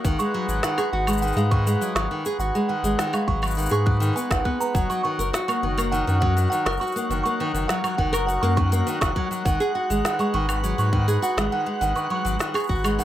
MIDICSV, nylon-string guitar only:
0, 0, Header, 1, 2, 480
1, 0, Start_track
1, 0, Tempo, 588235
1, 37, Time_signature, 4, 2, 24, 8
1, 10641, End_track
2, 0, Start_track
2, 0, Title_t, "Nylon-string guitar"
2, 0, Program_c, 0, 24
2, 40, Note_on_c, 0, 51, 94
2, 146, Note_off_c, 0, 51, 0
2, 161, Note_on_c, 0, 56, 96
2, 267, Note_off_c, 0, 56, 0
2, 280, Note_on_c, 0, 54, 81
2, 388, Note_off_c, 0, 54, 0
2, 398, Note_on_c, 0, 54, 69
2, 505, Note_off_c, 0, 54, 0
2, 520, Note_on_c, 0, 51, 84
2, 627, Note_off_c, 0, 51, 0
2, 636, Note_on_c, 0, 68, 94
2, 751, Note_off_c, 0, 68, 0
2, 760, Note_on_c, 0, 66, 74
2, 872, Note_off_c, 0, 66, 0
2, 877, Note_on_c, 0, 56, 96
2, 985, Note_off_c, 0, 56, 0
2, 997, Note_on_c, 0, 51, 79
2, 1105, Note_off_c, 0, 51, 0
2, 1115, Note_on_c, 0, 56, 101
2, 1224, Note_off_c, 0, 56, 0
2, 1240, Note_on_c, 0, 51, 100
2, 1347, Note_off_c, 0, 51, 0
2, 1362, Note_on_c, 0, 56, 102
2, 1468, Note_off_c, 0, 56, 0
2, 1481, Note_on_c, 0, 54, 85
2, 1589, Note_off_c, 0, 54, 0
2, 1599, Note_on_c, 0, 54, 75
2, 1706, Note_off_c, 0, 54, 0
2, 1721, Note_on_c, 0, 51, 75
2, 1827, Note_off_c, 0, 51, 0
2, 1842, Note_on_c, 0, 68, 93
2, 1954, Note_off_c, 0, 68, 0
2, 1961, Note_on_c, 0, 66, 82
2, 2073, Note_off_c, 0, 66, 0
2, 2081, Note_on_c, 0, 56, 94
2, 2187, Note_off_c, 0, 56, 0
2, 2197, Note_on_c, 0, 51, 79
2, 2305, Note_off_c, 0, 51, 0
2, 2318, Note_on_c, 0, 56, 94
2, 2425, Note_off_c, 0, 56, 0
2, 2438, Note_on_c, 0, 51, 94
2, 2545, Note_off_c, 0, 51, 0
2, 2554, Note_on_c, 0, 56, 91
2, 2663, Note_off_c, 0, 56, 0
2, 2675, Note_on_c, 0, 54, 72
2, 2780, Note_off_c, 0, 54, 0
2, 2790, Note_on_c, 0, 54, 65
2, 2902, Note_off_c, 0, 54, 0
2, 2913, Note_on_c, 0, 51, 77
2, 3023, Note_off_c, 0, 51, 0
2, 3029, Note_on_c, 0, 68, 99
2, 3147, Note_off_c, 0, 68, 0
2, 3149, Note_on_c, 0, 54, 79
2, 3261, Note_off_c, 0, 54, 0
2, 3266, Note_on_c, 0, 51, 105
2, 3380, Note_off_c, 0, 51, 0
2, 3392, Note_on_c, 0, 59, 80
2, 3503, Note_off_c, 0, 59, 0
2, 3515, Note_on_c, 0, 51, 69
2, 3624, Note_off_c, 0, 51, 0
2, 3632, Note_on_c, 0, 59, 96
2, 3743, Note_off_c, 0, 59, 0
2, 3757, Note_on_c, 0, 59, 68
2, 3865, Note_off_c, 0, 59, 0
2, 3873, Note_on_c, 0, 54, 78
2, 3987, Note_off_c, 0, 54, 0
2, 3997, Note_on_c, 0, 54, 78
2, 4105, Note_off_c, 0, 54, 0
2, 4117, Note_on_c, 0, 51, 75
2, 4225, Note_off_c, 0, 51, 0
2, 4235, Note_on_c, 0, 70, 97
2, 4350, Note_off_c, 0, 70, 0
2, 4353, Note_on_c, 0, 66, 73
2, 4469, Note_off_c, 0, 66, 0
2, 4472, Note_on_c, 0, 58, 97
2, 4583, Note_off_c, 0, 58, 0
2, 4595, Note_on_c, 0, 51, 71
2, 4704, Note_off_c, 0, 51, 0
2, 4712, Note_on_c, 0, 58, 95
2, 4823, Note_off_c, 0, 58, 0
2, 4833, Note_on_c, 0, 51, 93
2, 4943, Note_off_c, 0, 51, 0
2, 4956, Note_on_c, 0, 51, 80
2, 5064, Note_off_c, 0, 51, 0
2, 5071, Note_on_c, 0, 54, 78
2, 5185, Note_off_c, 0, 54, 0
2, 5195, Note_on_c, 0, 54, 78
2, 5304, Note_off_c, 0, 54, 0
2, 5318, Note_on_c, 0, 51, 80
2, 5426, Note_off_c, 0, 51, 0
2, 5435, Note_on_c, 0, 70, 93
2, 5550, Note_off_c, 0, 70, 0
2, 5557, Note_on_c, 0, 66, 77
2, 5671, Note_off_c, 0, 66, 0
2, 5678, Note_on_c, 0, 58, 86
2, 5786, Note_off_c, 0, 58, 0
2, 5798, Note_on_c, 0, 51, 82
2, 5905, Note_off_c, 0, 51, 0
2, 5920, Note_on_c, 0, 58, 96
2, 6026, Note_off_c, 0, 58, 0
2, 6040, Note_on_c, 0, 51, 97
2, 6146, Note_off_c, 0, 51, 0
2, 6157, Note_on_c, 0, 51, 77
2, 6265, Note_off_c, 0, 51, 0
2, 6280, Note_on_c, 0, 54, 80
2, 6386, Note_off_c, 0, 54, 0
2, 6396, Note_on_c, 0, 54, 72
2, 6505, Note_off_c, 0, 54, 0
2, 6515, Note_on_c, 0, 51, 80
2, 6624, Note_off_c, 0, 51, 0
2, 6631, Note_on_c, 0, 70, 93
2, 6748, Note_off_c, 0, 70, 0
2, 6760, Note_on_c, 0, 66, 81
2, 6872, Note_off_c, 0, 66, 0
2, 6876, Note_on_c, 0, 58, 108
2, 6984, Note_off_c, 0, 58, 0
2, 7000, Note_on_c, 0, 51, 83
2, 7107, Note_off_c, 0, 51, 0
2, 7115, Note_on_c, 0, 58, 105
2, 7224, Note_off_c, 0, 58, 0
2, 7235, Note_on_c, 0, 51, 101
2, 7344, Note_off_c, 0, 51, 0
2, 7355, Note_on_c, 0, 51, 72
2, 7464, Note_off_c, 0, 51, 0
2, 7474, Note_on_c, 0, 54, 78
2, 7586, Note_off_c, 0, 54, 0
2, 7595, Note_on_c, 0, 54, 67
2, 7704, Note_off_c, 0, 54, 0
2, 7717, Note_on_c, 0, 51, 75
2, 7825, Note_off_c, 0, 51, 0
2, 7835, Note_on_c, 0, 68, 93
2, 7950, Note_off_c, 0, 68, 0
2, 7957, Note_on_c, 0, 66, 77
2, 8071, Note_off_c, 0, 66, 0
2, 8079, Note_on_c, 0, 56, 100
2, 8186, Note_off_c, 0, 56, 0
2, 8198, Note_on_c, 0, 51, 72
2, 8305, Note_off_c, 0, 51, 0
2, 8316, Note_on_c, 0, 56, 98
2, 8424, Note_off_c, 0, 56, 0
2, 8435, Note_on_c, 0, 51, 106
2, 8544, Note_off_c, 0, 51, 0
2, 8557, Note_on_c, 0, 51, 73
2, 8665, Note_off_c, 0, 51, 0
2, 8679, Note_on_c, 0, 54, 89
2, 8788, Note_off_c, 0, 54, 0
2, 8798, Note_on_c, 0, 54, 78
2, 8906, Note_off_c, 0, 54, 0
2, 8918, Note_on_c, 0, 51, 80
2, 9025, Note_off_c, 0, 51, 0
2, 9040, Note_on_c, 0, 68, 99
2, 9153, Note_off_c, 0, 68, 0
2, 9158, Note_on_c, 0, 66, 88
2, 9272, Note_off_c, 0, 66, 0
2, 9282, Note_on_c, 0, 56, 94
2, 9387, Note_off_c, 0, 56, 0
2, 9402, Note_on_c, 0, 51, 76
2, 9507, Note_off_c, 0, 51, 0
2, 9517, Note_on_c, 0, 56, 90
2, 9625, Note_off_c, 0, 56, 0
2, 9637, Note_on_c, 0, 51, 93
2, 9745, Note_off_c, 0, 51, 0
2, 9755, Note_on_c, 0, 51, 75
2, 9864, Note_off_c, 0, 51, 0
2, 9875, Note_on_c, 0, 54, 79
2, 9983, Note_off_c, 0, 54, 0
2, 9993, Note_on_c, 0, 54, 79
2, 10103, Note_off_c, 0, 54, 0
2, 10112, Note_on_c, 0, 51, 76
2, 10223, Note_off_c, 0, 51, 0
2, 10234, Note_on_c, 0, 68, 93
2, 10349, Note_off_c, 0, 68, 0
2, 10357, Note_on_c, 0, 66, 79
2, 10471, Note_off_c, 0, 66, 0
2, 10479, Note_on_c, 0, 56, 98
2, 10586, Note_off_c, 0, 56, 0
2, 10597, Note_on_c, 0, 51, 81
2, 10641, Note_off_c, 0, 51, 0
2, 10641, End_track
0, 0, End_of_file